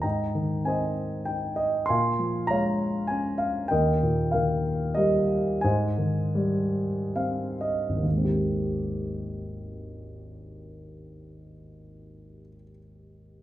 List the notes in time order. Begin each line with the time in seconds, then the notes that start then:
0.02 G#2 D#5 G5 A#5
0.35 D#3
0.65 C4 C5 D#5 G#5
1.25 D#4 G5
1.56 D#5
1.86 F5 G#5 C6
1.90 A#2
2.19 F3
2.47 G#3 C#5 F5 A#5
3.07 C#4 G#5
3.38 F5
3.68 D#2 A#4 D#5 G5
4.03 A#2
4.31 D#3 A#4 F5
4.94 G3 G4 A#4 D#5
5.61 G#2 C5 D#5 G#5
5.98 D#3
6.35 G3
7.16 C4 F5
7.61 D#5
7.89 G#1
7.96 D#2
8.03 D#3
8.10 G#3
8.17 C4
8.25 G4